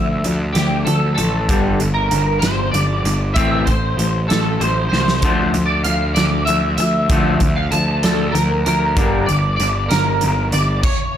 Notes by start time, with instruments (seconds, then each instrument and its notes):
Already playing: picked electric bass D2, clean electric guitar D3 F3 E5
0.24 picked electric bass D2, clean electric guitar D3 F3, closed hi-hat
0.52 picked electric bass D2, clean electric guitar D3 G4, snare, closed hi-hat
0.57 clean electric guitar F3
0.85 picked electric bass D2, clean electric guitar D3 F3 A4, closed hi-hat
1.14 clean electric guitar A4, closed hi-hat
1.18 picked electric bass A1, clean electric guitar D3 F3
1.49 picked electric bass G1, clean electric guitar G2 D3 G3, kick, closed hi-hat
1.80 picked electric bass G1, clean electric guitar G2 D3, closed hi-hat
1.94 clean electric guitar A#4
2.11 picked electric bass G1, clean electric guitar G2 D3, closed hi-hat
2.39 picked electric bass G1, clean electric guitar C5, snare, closed hi-hat
2.43 clean electric guitar G2 D3
2.71 picked electric bass G1, clean electric guitar G2 D3 D5, closed hi-hat
3.04 picked electric bass G1, clean electric guitar G2 D3, closed hi-hat
3.34 picked electric bass A1, clean electric guitar A2 E3 E5, kick, closed hi-hat
3.38 clean electric guitar C4
3.65 picked electric bass A1, clean electric guitar A2 E3 C5, kick, closed hi-hat
3.97 picked electric bass A1, clean electric guitar A2 E3, closed hi-hat
4.28 picked electric bass A1, clean electric guitar A2 A4, snare, closed hi-hat
4.32 clean electric guitar E3
4.60 picked electric bass A1, clean electric guitar A2 E3 C5, closed hi-hat
4.89 picked electric bass C2, clean electric guitar C5, snare
4.93 clean electric guitar A2 E3
5.08 snare
5.22 picked electric bass D2, clean electric guitar D3 F3 A3, kick, closed hi-hat
5.54 picked electric bass D2, clean electric guitar D3 F3, closed hi-hat
5.66 clean electric guitar D5
5.84 picked electric bass D2, clean electric guitar D3 F3 F5, closed hi-hat
6.14 picked electric bass D2, clean electric guitar D3 F3 D5, snare, closed hi-hat
6.45 picked electric bass D2, clean electric guitar D3 F3 E5, closed hi-hat
6.77 picked electric bass D2, clean electric guitar D3 F3 E5, closed hi-hat
7.09 picked electric bass D2, clean electric guitar D3 F3 A3, kick, closed hi-hat
7.40 picked electric bass D2, clean electric guitar D3 F3, kick, closed hi-hat
7.56 clean electric guitar F5
7.71 picked electric bass D2, clean electric guitar D3 F3 A5, closed hi-hat
8.03 picked electric bass D2, clean electric guitar D3 F3 A4, snare, closed hi-hat
8.29 clean electric guitar A4 A#4
8.34 picked electric bass D2, clean electric guitar D3 F3, closed hi-hat
8.65 picked electric bass D2, clean electric guitar D3 F3 A#4, closed hi-hat
8.96 picked electric bass G1, clean electric guitar G2 D3 G3, kick, closed hi-hat
9.26 picked electric bass G1, clean electric guitar G2 D3 D5, closed hi-hat
9.56 clean electric guitar D5, closed hi-hat
9.60 picked electric bass G1, clean electric guitar G2 D3
9.89 picked electric bass G1, clean electric guitar G2 D3 A#4, snare, closed hi-hat
10.21 picked electric bass G1, clean electric guitar G2 D3, closed hi-hat
10.52 picked electric bass G1, clean electric guitar G2 D3 D5, closed hi-hat
10.83 clean electric guitar C#5, kick, crash